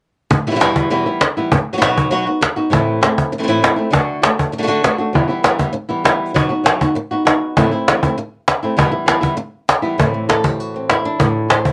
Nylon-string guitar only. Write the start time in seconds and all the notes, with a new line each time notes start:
0.30 muted nylon-string guitar stroke
0.47 B2 E3 G3 B3 E4
0.51 B2 E3 G3 B3 E4
0.56 E3 G3 B3 E4
0.60 E2 B2 E3 G3 B3 E4
0.90 E2 B2 E3 G3 B3 E4
1.06 E3 G3 B3 E4
1.22 muted nylon-string guitar stroke
1.37 E3 G3 B3 E4
1.53 muted nylon-string guitar stroke
1.73 F#3 B3 D#4 F#4
1.78 B2 F#3 B3 D#4 F#4
1.82 F#3 B3 D#4 F#4
2.11 B2 F#3 B3 D#4 F#4
2.27 B3 D#4 F#4
2.41 muted nylon-string guitar stroke
2.56 B3 D#4 F#4
2.70 A2 E3 A3 C4 E4
3.01 A3 C4 E4
3.32 muted nylon-string guitar stroke
3.38 E3 A3 C4 E4
3.43 E3 A3 C4 E4
3.48 A2 E3 A3 C4 E4
3.62 E3 A3 C4 E4
3.76 A3 C4 E4
3.90 D3 A3 D4 F#4
4.22 A3 D4 F#4
4.52 muted nylon-string guitar stroke
4.58 D3 A3 D4 F#4
4.63 D3 A3 D4 F#4
4.67 D3 A3 D4 F#4
4.83 D3 A3 D4 F#4
4.98 A3 D4 F#4
5.13 E2 B2 E3 G3 B3 E4
5.28 E3 G3 B3 E4
5.43 E3 G3 B3 E4
5.59 E3 G3 B3 E4
5.73 muted nylon-string guitar stroke
5.89 E3 G3 B3 E4
6.04 E3 G3 B3 E4
6.34 B2 F#3 B3 D#4 F#4
6.49 B3 D#4 F#4
6.64 F#3 B3 D#4 F#4
6.81 B3 D#4 F#4
6.95 muted nylon-string guitar stroke
7.11 B3 D#4 F#4
7.25 B3 D#4 F#4
7.57 A2 E3 A3 C4 E4
7.71 A3 C4 E4
7.87 E3 A3 C4 E4
8.03 A3 C4 E4
8.18 muted nylon-string guitar stroke
8.63 A3 C4 E4
8.76 E2 B2 E3 G3 B3 E4
8.91 E3 G3 B3 E4
9.06 E3 G3 B3 E4
9.21 E3 G3 B3 E4
9.37 muted nylon-string guitar stroke
9.82 E3 G3 B3 E4
9.98 A2 E3 A3 C4 E4
10.14 A3
10.29 A4
10.44 G4
10.60 F#4
10.76 C4
10.91 E4
11.05 D4
11.19 A2 E4
11.51 C5
11.65 E4